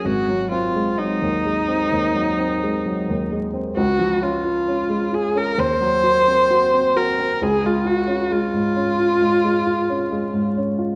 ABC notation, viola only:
X:1
M:4/4
L:1/16
Q:1/4=66
K:Db
V:1 name="Viola"
G2 F2 E8- E2 z2 | G2 F4 A B c6 B2 | A F G2 F8- F2 z2 |]